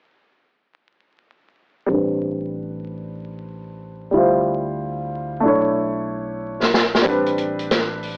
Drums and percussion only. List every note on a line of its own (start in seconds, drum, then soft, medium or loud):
6.62 snare medium
6.74 snare medium
6.95 snare medium
7.06 kick medium
7.06 closed hi-hat medium
7.26 closed hi-hat soft
7.38 closed hi-hat medium
7.59 closed hi-hat soft
7.71 snare medium
7.71 closed hi-hat medium
8.03 open hi-hat soft